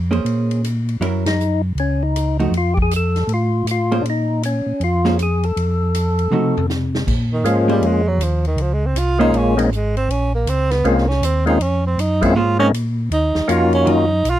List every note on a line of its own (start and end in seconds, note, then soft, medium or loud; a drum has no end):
0.00 0.20 F2 medium
0.11 0.60 A#3 medium
0.11 0.60 C#4 medium
0.11 0.60 G#4 medium
0.11 0.61 C5 medium
0.11 ride soft
0.24 0.97 A#2 medium
0.24 ride medium
0.51 ride soft
0.64 hi-hat pedal medium
0.64 ride medium
0.88 ride soft
1.00 1.73 F#2 medium
1.00 1.23 F#3 medium
1.00 1.23 C#4 medium
1.00 1.23 E4 medium
1.00 1.23 A#4 medium
1.00 ride medium
1.26 1.62 D#4 loud
1.26 snare medium
1.26 ride medium
1.40 hi-hat pedal soft
1.75 2.48 C#2 medium
1.75 ride soft
1.80 2.03 C#4 medium
2.03 2.37 D#4 medium
2.16 hi-hat pedal medium
2.16 ride medium
2.39 2.52 F3 soft
2.39 2.52 A3 medium
2.39 2.52 D#4 soft
2.39 2.52 F#4 medium
2.39 ride soft
2.51 3.24 F2 medium
2.51 ride medium
2.58 2.74 F4 medium
2.74 2.79 G4 medium
2.74 kick medium
2.82 2.94 G#4 medium
2.91 hi-hat pedal medium
2.91 ride medium
2.96 3.33 A4 loud
3.15 snare soft
3.15 ride soft
3.27 3.63 A2 medium
3.27 ride medium
3.34 3.67 F4 medium
3.65 4.01 A2 medium
3.65 hi-hat pedal medium
3.65 ride medium
3.71 4.03 F4 medium
3.92 4.04 A#3 medium
3.92 4.04 C#4 medium
3.92 4.04 G#4 medium
3.92 4.04 C5 medium
3.92 ride soft
4.02 4.62 A#2 medium
4.02 4.06 D4 medium
4.02 ride medium
4.10 4.43 D#4 medium
4.43 4.83 C#4 medium
4.43 hi-hat pedal medium
4.43 ride medium
4.66 4.73 A#2 soft
4.80 5.52 F2 medium
4.80 5.17 F4 medium
4.80 ride soft
5.04 5.17 A#3 medium
5.04 5.17 C#4 medium
5.04 5.17 G#4 medium
5.04 5.18 C5 medium
5.04 snare soft
5.19 5.45 G#4 medium
5.19 hi-hat pedal medium
5.19 ride medium
5.43 6.66 A4 medium
5.43 ride soft
5.56 6.28 F2 medium
5.56 ride medium
5.94 hi-hat pedal medium
5.94 ride medium
6.19 ride soft
6.31 6.66 C3 medium
6.31 6.53 F3 medium
6.31 6.54 A3 medium
6.31 6.54 D#4 medium
6.31 6.54 F#4 medium
6.31 mid tom soft
6.57 floor tom medium
6.68 7.04 C3 medium
6.68 snare medium
6.68 hi-hat pedal medium
6.95 snare medium
7.07 7.44 A#2 medium
7.07 kick medium
7.07 crash medium
7.33 7.48 D#3 medium
7.44 7.81 G#2 medium
7.44 7.70 F3 medium
7.44 8.02 G#3 medium
7.44 8.02 A#3 medium
7.44 8.02 C#4 medium
7.44 8.02 F4 medium
7.44 hi-hat pedal soft
7.44 ride medium
7.68 7.87 G3 medium
7.68 8.17 A#3 medium
7.68 8.18 C#4 medium
7.68 8.18 G#4 medium
7.68 8.18 C5 medium
7.68 ride soft
7.81 8.18 F2 medium
7.81 ride medium
7.86 8.09 G#3 medium
8.08 8.25 F#3 medium
8.18 8.56 D#2 medium
8.18 hi-hat pedal medium
8.18 ride medium
8.23 8.46 F3 medium
8.45 8.63 D#3 medium
8.45 ride soft
8.56 8.94 C#2 medium
8.56 ride medium
8.61 8.75 F3 medium
8.73 8.88 G#3 medium
8.87 9.00 C4 medium
8.94 9.32 C2 medium
8.94 hi-hat pedal medium
8.94 ride medium
8.98 9.20 F4 loud
9.19 9.55 G#3 medium
9.19 9.55 A#3 medium
9.19 9.68 A#3 medium
9.19 9.55 C#4 medium
9.19 9.69 C#4 medium
9.19 9.38 D#4 medium
9.19 9.55 F4 medium
9.19 9.69 G#4 medium
9.19 9.69 C5 medium
9.19 ride soft
9.33 9.70 A#1 medium
9.33 ride medium
9.37 9.59 C#4 medium
9.57 9.76 F3 soft
9.57 9.70 G#3 medium
9.57 9.70 A#3 medium
9.57 9.70 C4 medium
9.57 9.70 C#4 medium
9.57 9.70 D#4 medium
9.57 ride medium
9.71 10.08 G#1 medium
9.71 hi-hat pedal medium
9.75 9.96 G#3 medium
9.97 10.12 C4 medium
9.97 ride soft
10.09 10.45 A#1 medium
10.09 10.34 C#4 medium
10.09 ride medium
10.35 10.51 A#3 medium
10.46 10.83 C#2 medium
10.46 10.73 C4 medium
10.46 hi-hat pedal soft
10.46 ride medium
10.71 10.88 B3 medium
10.71 snare soft
10.71 ride soft
10.84 11.21 C2 medium
10.84 11.06 G#3 medium
10.84 11.06 A#3 medium
10.84 11.10 A#3 medium
10.84 11.07 C4 medium
10.84 11.06 C#4 medium
10.84 11.07 F4 medium
10.84 ride soft
10.98 snare soft
11.08 11.26 C#4 loud
11.08 snare soft
11.21 11.58 D#2 medium
11.21 11.46 C4 medium
11.21 hi-hat pedal medium
11.21 ride medium
11.46 11.58 G#3 medium
11.46 11.58 A#3 medium
11.46 11.59 C4 medium
11.46 11.59 C#4 medium
11.46 11.63 D#4 medium
11.46 11.59 F4 medium
11.46 ride soft
11.60 11.96 F2 medium
11.60 11.85 C#4 medium
11.60 ride medium
11.87 12.02 C4 medium
11.97 12.34 F#2 medium
11.97 12.23 D#4 medium
11.97 hi-hat pedal medium
11.97 ride medium
12.21 12.34 G#3 medium
12.21 12.34 A#3 medium
12.21 12.34 C4 medium
12.21 12.35 C#4 medium
12.21 12.38 E4 medium
12.21 12.35 F4 medium
12.21 kick soft
12.21 ride medium
12.34 12.71 G#2 medium
12.34 12.57 A#3 medium
12.34 12.58 C#4 medium
12.34 12.59 F4 loud
12.34 12.58 G#4 medium
12.34 12.58 C5 medium
12.59 12.72 G#3 medium
12.59 12.72 A#3 medium
12.59 12.72 C4 medium
12.59 12.68 C#4 medium
12.59 12.72 C#4 medium
12.59 12.72 D#4 medium
12.72 13.09 A#2 medium
12.72 hi-hat pedal soft
12.72 ride medium
13.10 13.33 D#2 medium
13.10 13.53 D#4 medium
13.10 ride medium
13.35 13.42 D#2 soft
13.35 snare medium
13.48 13.85 F2 medium
13.48 14.05 A#3 medium
13.48 14.06 C#4 medium
13.48 14.06 D#4 medium
13.48 14.06 F4 medium
13.48 14.05 F#4 medium
13.48 hi-hat pedal medium
13.48 ride medium
13.52 13.74 F4 medium
13.73 13.92 C#4 medium
13.73 ride soft
13.86 14.23 F#2 medium
13.86 14.08 D#3 medium
13.86 14.08 F#3 medium
13.86 14.08 C#4 medium
13.86 14.08 F4 medium
13.86 ride medium
13.91 14.32 D#4 medium
14.24 14.39 B1 medium
14.24 hi-hat pedal medium
14.24 ride medium
14.30 14.39 F4 medium